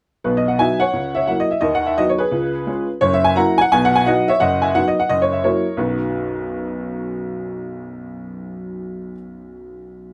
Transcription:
0.24 B1 B2 B4
0.37 D#5
0.48 F#5
0.59 F#3 B3 D#4 E5 G#5
0.80 C#5 F#5
0.93 C#2 C#3
1.15 C#5 E5
1.27 F#3 A#3 E4 F#5
1.40 D#5
1.51 E5
1.61 D#2 D#3 D#5
1.75 F#5
1.86 E5
1.98 F#3 B3 D#4 D#5
2.09 C#5
2.18 G#4 B4
2.31 C#2 C#3
2.67 G#3 C#4 F4
3.01 F#1 F#2 C#5
3.14 E5
3.24 G#5
3.36 F#3 A#3 E4 F#5 A#5
3.58 F#5 G#5
3.72 B1 B2 G#5
3.85 F#5
3.96 G#5
4.06 F#3 B3 D#4 D#5 F#5
4.28 C#5 E5
4.40 F#1 F#2 D#5 F#5
4.62 E5 G#5
4.75 F#3 B3 D#4 F#5
4.88 D#5
5.00 F#5
5.09 F#1 F#2 D#5
5.22 C#5
5.32 E5
5.44 F#3 A#3 E4 A#4 C#5
5.77 B1 F#2 F#3 B3 D#4 F#4 B4

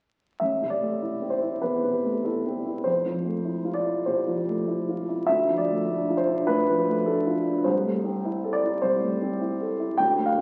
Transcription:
0.40 A1 E5
0.62 C3
0.70 D5
0.81 A3
1.02 E4
1.22 C4
1.30 C5
1.42 E4
1.62 E2 B4
1.83 C3
2.04 A3
2.24 E4 A4
2.46 C4
2.66 E4
2.84 F2 C5
3.06 F3
3.25 A3
3.45 E4
3.65 F4
3.74 D5
3.85 E4
4.06 C3 C5
4.27 F3
4.49 A3
4.68 E4
4.89 F4
5.09 E4
5.27 D2 E5
5.49 F3
5.58 D5
5.71 A3
5.90 D4
6.09 F4
6.17 C5
6.29 D4
6.47 A2 B4
6.68 F3
6.89 A3
7.06 D4 A4
7.27 F4
7.47 D4
7.64 C2 C5
7.85 A3
8.04 C4
8.25 E4
8.44 A4
8.53 D5
8.64 E4
8.82 C2 C5
9.02 A3
9.22 C4
9.41 E4
9.61 A4
9.80 E4
9.97 D2 G5
10.18 A3
10.26 F5
10.38 C4

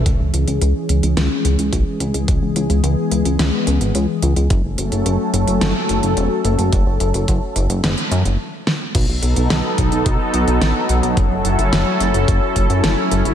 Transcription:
0.06 C#2 E3 G#3 C#4 G#4, kick, closed hi-hat
0.20 C#2
0.34 C#2, closed hi-hat
0.48 C#2, closed hi-hat
0.62 C#2, closed hi-hat
0.89 C#2, closed hi-hat
1.03 C#2, closed hi-hat
1.17 C#2, snare, closed hi-hat
1.45 C#2, closed hi-hat
1.59 C#2, closed hi-hat
1.73 B1, kick, closed hi-hat
2.00 C#2, closed hi-hat
2.14 C#2, closed hi-hat
2.28 C#2 B3, kick, closed hi-hat
2.42 C#2
2.56 C#2, closed hi-hat
2.70 C#2, closed hi-hat
2.84 C#2, closed hi-hat
3.11 C#2, closed hi-hat
3.25 C#2, closed hi-hat
3.39 C#2, snare, closed hi-hat
3.67 C#2, closed hi-hat
3.81 G#1, closed hi-hat
3.95 C#2, closed hi-hat
4.22 C#2, closed hi-hat
4.36 C#2, closed hi-hat
4.50 F#1 F#3 A3 C#4 A4, kick, closed hi-hat
4.64 F#1
4.78 F#1, closed hi-hat
4.92 F#1, closed hi-hat
5.06 F#1, closed hi-hat
5.34 F#1, closed hi-hat
5.48 F#1, closed hi-hat
5.61 F#1, snare, closed hi-hat
5.89 F#1, closed hi-hat
6.03 F#1, closed hi-hat
6.17 E1, closed hi-hat
6.45 F#1, closed hi-hat
6.59 F#1, closed hi-hat
6.73 F#1, kick, closed hi-hat
6.86 F#1
7.00 F#1, closed hi-hat
7.14 F#1, closed hi-hat
7.28 F#1, kick, closed hi-hat
7.56 F#1, closed hi-hat
7.70 F#1, closed hi-hat
7.84 F#1, snare, closed hi-hat
7.98 closed hi-hat
8.11 F#2, closed hi-hat
8.25 F#1, closed hi-hat
8.67 snare
8.95 B1 F#3 B3 D#4 A4, kick, closed hi-hat, crash
9.09 B1
9.23 B1, closed hi-hat
9.36 B1, closed hi-hat
9.50 B1, snare, closed hi-hat
9.78 B1, kick, closed hi-hat
9.92 B1, closed hi-hat
10.06 B1, kick, closed hi-hat
10.34 B1, closed hi-hat
10.47 B1, closed hi-hat
10.61 A1, snare, closed hi-hat
10.89 B1, closed hi-hat
11.03 B1, closed hi-hat
11.17 F#1 C#4 E4 A4, kick, closed hi-hat
11.31 F#1
11.45 F#1, closed hi-hat
11.59 F#1, closed hi-hat
11.73 F#1, snare, closed hi-hat
12.00 F#1, closed hi-hat
12.14 F#1, closed hi-hat
12.28 F#1, kick, closed hi-hat
12.56 F#1, kick, closed hi-hat
12.70 F#2, closed hi-hat
12.84 F#1, snare, closed hi-hat
13.11 F#1, closed hi-hat
13.25 F#1, closed hi-hat

